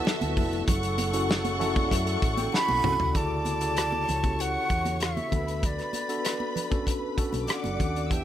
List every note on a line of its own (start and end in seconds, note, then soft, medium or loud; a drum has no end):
0.00 0.66 D3 medium
0.00 3.12 F#3 medium
0.00 0.66 B3 medium
0.00 0.70 B3 loud
0.00 0.70 E4 loud
0.00 3.11 E4 medium
0.00 0.64 F#4 medium
0.00 0.70 F#4 loud
0.00 0.70 A4 loud
0.00 0.64 E5 loud
0.00 0.64 A5 loud
0.05 snare loud
0.05 muted conga soft
0.21 0.34 D2 loud
0.21 closed hi-hat medium
0.21 high conga medium
0.37 0.61 F1 medium
0.37 kick medium
0.37 open hi-hat soft
0.37 muted conga soft
0.37 high conga medium
0.37 low conga medium
0.53 closed hi-hat medium
0.68 1.88 F#1 loud
0.68 3.13 C#3 medium
0.68 3.13 A3 medium
0.68 3.11 A4 loud
0.68 3.11 F#5 medium
0.68 3.11 C#6 loud
0.68 kick loud
0.68 closed hi-hat medium
0.68 muted conga soft
0.68 low conga medium
0.83 closed hi-hat medium
0.98 closed hi-hat medium
0.98 muted conga soft
0.98 high conga medium
1.13 1.46 C#4 medium
1.13 1.46 E4 medium
1.13 1.46 F#4 medium
1.13 1.46 A4 medium
1.13 closed hi-hat medium
1.30 snare loud
1.30 muted conga soft
1.45 closed hi-hat medium
1.45 high conga medium
1.59 2.45 C#4 medium
1.59 2.45 E4 medium
1.59 2.45 F#4 medium
1.59 2.46 A4 loud
1.59 1.75 E5 medium
1.59 closed hi-hat medium
1.59 low conga medium
1.76 1.90 D5 medium
1.76 kick loud
1.76 closed hi-hat soft
1.76 high conga medium
1.91 2.15 F#2 loud
1.91 2.05 E5 medium
1.91 kick medium
1.91 closed hi-hat loud
1.91 muted conga soft
2.07 2.36 F#5 medium
2.07 closed hi-hat medium
2.22 2.46 A1 medium
2.22 kick medium
2.22 closed hi-hat medium
2.37 2.52 G5 medium
2.37 closed hi-hat medium
2.37 high conga medium
2.52 2.68 A5 medium
2.52 3.19 B5 loud
2.52 snare medium
2.52 muted conga soft
2.69 2.81 B1 medium
2.69 3.12 B5 medium
2.69 high conga medium
2.84 2.96 C2 loud
2.84 3.06 C#4 medium
2.84 3.06 E4 medium
2.84 3.06 F#4 medium
2.84 3.06 A4 medium
2.84 mid tom loud
2.84 muted conga soft
2.84 high conga medium
2.84 low conga medium
3.00 3.12 C#2 medium
3.00 floor tom loud
3.14 4.04 D2 medium
3.14 3.47 C#3 medium
3.14 3.47 E4 medium
3.14 3.47 F#4 medium
3.14 3.47 A4 medium
3.14 4.06 D5 medium
3.14 4.42 A5 medium
3.14 4.06 D6 medium
3.14 kick medium
3.14 closed hi-hat medium
3.14 muted conga soft
3.14 low conga medium
3.45 closed hi-hat medium
3.45 muted conga soft
3.45 high conga medium
3.61 4.04 C#3 medium
3.61 4.04 E4 medium
3.61 4.04 F#4 medium
3.61 4.04 A4 medium
3.61 closed hi-hat medium
3.77 cross-stick medium
3.77 closed hi-hat medium
3.92 high conga medium
4.08 4.56 C#2 medium
4.08 5.29 C#5 medium
4.08 5.29 C#6 medium
4.08 closed hi-hat medium
4.08 muted conga soft
4.08 low conga medium
4.23 5.08 C#4 medium
4.23 5.08 E4 medium
4.23 5.09 F#4 medium
4.23 4.30 G4 medium
4.23 kick medium
4.23 closed hi-hat soft
4.23 high conga medium
4.30 5.12 A4 medium
4.39 5.02 F#5 loud
4.39 closed hi-hat medium
4.39 muted conga soft
4.70 5.17 E2 medium
4.70 kick medium
4.70 closed hi-hat medium
4.85 closed hi-hat medium
4.85 high conga medium
5.00 5.67 E5 medium
5.00 cross-stick loud
5.00 closed hi-hat medium
5.00 muted conga soft
5.17 closed hi-hat soft
5.17 high conga medium
5.31 5.79 D2 medium
5.31 5.93 B3 medium
5.31 5.94 D4 medium
5.31 5.94 F#4 medium
5.31 5.94 A4 medium
5.31 7.45 B4 medium
5.31 7.45 B5 medium
5.31 kick medium
5.31 closed hi-hat medium
5.31 muted conga soft
5.31 high conga soft
5.31 low conga medium
5.48 closed hi-hat soft
5.63 6.88 D5 medium
5.63 kick loud
5.63 closed hi-hat medium
5.63 low conga medium
5.79 cross-stick soft
5.79 closed hi-hat soft
5.93 closed hi-hat medium
5.93 muted conga soft
5.93 high conga medium
6.09 6.52 B3 medium
6.09 6.52 D4 medium
6.09 6.52 F#4 medium
6.09 6.52 A4 medium
6.09 closed hi-hat soft
6.25 cross-stick medium
6.25 closed hi-hat medium
6.40 high conga medium
6.56 closed hi-hat medium
6.56 low conga medium
6.70 7.02 C#4 medium
6.70 7.03 D4 medium
6.70 7.03 F#4 medium
6.70 7.03 A4 medium
6.70 kick medium
6.70 closed hi-hat soft
6.70 high conga medium
6.87 kick medium
6.87 closed hi-hat medium
6.87 muted conga soft
7.17 7.60 C#4 medium
7.17 7.60 D4 medium
7.17 7.60 F#4 medium
7.17 7.60 A4 medium
7.17 muted fingered electric bass stroke soft
7.17 kick medium
7.17 closed hi-hat medium
7.17 muted conga soft
7.33 7.45 B1 medium
7.33 closed hi-hat medium
7.33 high conga medium
7.47 8.09 D5 medium
7.47 8.09 D6 medium
7.47 cross-stick loud
7.47 closed hi-hat medium
7.47 muted conga soft
7.51 8.14 F#5 medium
7.64 7.76 F#1 medium
7.64 closed hi-hat soft
7.64 high conga medium
7.79 8.11 D#2 medium
7.79 8.01 C#4 medium
7.79 8.01 D4 medium
7.79 8.01 F#4 medium
7.79 8.01 A4 medium
7.79 kick medium
7.79 closed hi-hat medium
7.79 high conga medium
7.79 low conga medium
7.96 closed hi-hat soft
8.10 8.24 E2 medium
8.10 8.24 B3 medium
8.10 8.24 D4 medium
8.10 8.24 E4 medium
8.10 8.24 G4 medium
8.10 8.24 E5 medium
8.10 8.24 G5 medium
8.10 8.24 E6 medium
8.10 kick loud
8.10 closed hi-hat medium
8.10 low conga medium